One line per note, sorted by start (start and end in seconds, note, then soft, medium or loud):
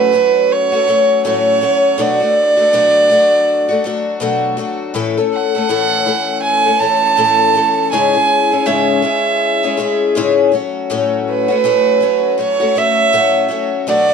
0.00 0.13 A2 medium
0.00 0.11 F#3 medium
0.00 0.12 A3 medium
0.00 0.13 C#4 medium
0.00 0.14 F#4 medium
0.00 0.54 B4 loud
0.12 0.72 F#3 medium
0.12 0.73 A3 medium
0.12 0.72 C#4 medium
0.12 0.71 F#4 medium
0.52 1.25 C#5 loud
0.72 0.87 A3 soft
0.72 0.88 C#4 soft
0.72 0.87 F#4 medium
0.87 1.24 F#3 medium
0.87 1.24 A3 medium
0.87 1.25 C#4 medium
0.87 1.26 F#4 medium
1.25 1.62 A2 medium
1.25 1.60 F#3 medium
1.25 1.61 A3 medium
1.25 1.62 C#4 medium
1.25 1.63 F#4 medium
1.25 2.02 C#5 loud
1.61 1.97 F#3 medium
1.61 1.98 A3 medium
1.61 1.99 C#4 medium
1.61 1.99 F#4 medium
1.98 2.20 B2 medium
1.98 2.21 F#3 medium
1.98 2.21 A3 medium
1.98 2.20 D4 medium
1.98 2.19 F#4 medium
1.98 4.22 D5 loud
2.20 2.59 A3 soft
2.20 2.58 D4 soft
2.20 2.56 F#4 medium
2.57 2.73 A3 soft
2.57 2.73 D4 soft
2.57 2.72 F#4 medium
2.73 3.10 B2 medium
2.73 3.08 F#3 medium
2.73 3.10 A3 medium
2.73 3.11 D4 medium
2.73 3.11 F#4 medium
3.10 3.69 F#3 medium
3.10 3.70 A3 medium
3.10 3.69 D4 medium
3.10 3.67 F#4 medium
3.69 3.84 A3 soft
3.69 3.85 D4 medium
3.69 3.84 F#4 medium
3.84 4.20 F#3 medium
3.84 4.20 A3 medium
3.84 4.21 D4 medium
3.84 4.21 F#4 medium
4.20 4.58 B2 medium
4.20 4.56 F#3 medium
4.20 4.57 A3 medium
4.20 4.58 D4 medium
4.20 4.59 F#4 medium
4.57 4.94 F#3 medium
4.57 4.94 A3 medium
4.57 4.95 D4 medium
4.57 4.96 F#4 medium
4.94 5.17 A2 medium
4.94 5.17 E3 medium
4.94 5.18 A3 medium
4.94 5.18 C#4 medium
4.94 5.16 A4 medium
5.18 5.56 A3 soft
5.18 5.55 C#4 soft
5.18 5.54 A4 soft
5.34 6.41 F#5 loud
5.55 5.69 A3 soft
5.55 5.69 C#4 soft
5.55 5.70 A4 medium
5.69 6.07 A2 medium
5.69 6.04 E3 medium
5.69 6.06 A3 medium
5.69 6.07 C#4 medium
5.69 6.08 A4 medium
6.06 6.66 E3 medium
6.06 6.67 A3 medium
6.06 6.66 C#4 medium
6.06 6.65 A4 medium
6.43 6.81 G#5 loud
6.66 6.80 A3 soft
6.66 6.81 C#4 soft
6.66 6.81 A4 medium
6.80 7.16 E3 medium
6.80 7.17 A3 medium
6.80 7.17 C#4 medium
6.80 7.18 A4 medium
6.80 7.92 A5 loud
7.17 7.55 A2 medium
7.17 7.53 E3 medium
7.17 7.54 A3 medium
7.17 7.56 C#4 medium
7.17 7.56 A4 medium
7.54 7.92 E3 medium
7.54 7.93 A3 medium
7.54 7.92 C#4 medium
7.54 7.94 A4 medium
7.92 8.15 G#2 medium
7.92 8.15 C#3 medium
7.92 8.15 G#3 medium
7.92 8.15 C#4 medium
7.92 8.14 E4 medium
7.92 8.13 G#4 medium
7.92 8.68 G#5 loud
8.14 8.53 G#3 soft
8.14 8.52 C#4 soft
8.14 8.51 E4 soft
8.14 8.50 G#4 soft
8.51 8.65 G#3 soft
8.51 8.66 C#4 soft
8.51 8.66 E4 medium
8.51 8.67 G#4 medium
8.66 9.04 G#2 medium
8.66 9.04 C#3 medium
8.66 9.01 G#3 medium
8.66 9.02 C#4 medium
8.66 9.03 E4 medium
8.66 9.04 G#4 medium
8.66 10.53 E5 medium
9.02 9.63 G#3 medium
9.02 9.63 C#4 medium
9.02 9.63 E4 medium
9.02 9.62 G#4 medium
9.63 9.76 G#3 soft
9.63 9.77 C#4 soft
9.63 9.78 E4 medium
9.63 9.78 G#4 medium
9.77 10.15 G#3 medium
9.77 10.16 C#4 medium
9.77 10.16 E4 medium
9.77 10.16 G#4 medium
10.15 10.53 G#2 medium
10.15 10.53 C#3 medium
10.15 10.51 G#3 medium
10.15 10.53 C#4 medium
10.15 10.53 E4 loud
10.15 10.54 G#4 loud
10.52 10.89 F#3 medium
10.52 10.89 A3 medium
10.52 10.90 C#4 medium
10.52 10.90 F#4 medium
10.90 11.49 A2 medium
10.90 11.50 F#3 medium
10.90 11.50 A3 medium
10.90 11.49 C#4 loud
10.90 11.47 F#4 medium
11.29 12.36 B4 medium
11.48 11.64 A3 soft
11.48 11.64 C#4 medium
11.48 11.64 F#4 medium
11.64 12.01 A2 medium
11.64 11.99 F#3 medium
11.64 12.01 A3 medium
11.64 12.02 C#4 medium
11.64 12.02 F#4 medium
12.00 12.36 F#3 medium
12.00 12.38 A3 medium
12.00 12.38 C#4 medium
12.00 12.39 F#4 medium
12.38 12.61 F#3 medium
12.38 12.61 A3 medium
12.38 12.60 C#4 medium
12.38 12.59 F#4 medium
12.38 12.80 C#5 loud
12.60 12.75 A3 soft
12.60 12.76 C#4 soft
12.60 12.75 F#4 medium
12.75 13.12 F#3 medium
12.75 13.13 A3 medium
12.75 13.13 C#4 medium
12.75 13.13 F#4 medium
12.75 13.52 E5 loud
13.13 13.50 A2 medium
13.13 13.47 F#3 medium
13.13 13.48 A3 medium
13.13 13.49 C#4 medium
13.13 13.50 F#4 medium
13.48 13.86 F#3 medium
13.48 13.87 A3 medium
13.48 13.88 C#4 medium
13.48 13.88 F#4 medium
13.87 14.10 B2 medium
13.87 14.10 F#3 medium
13.87 14.10 A3 medium
13.87 14.09 D4 medium
13.87 14.08 F#4 medium
13.87 14.14 D5 loud
14.09 14.14 D4 soft
14.09 14.14 F#4 soft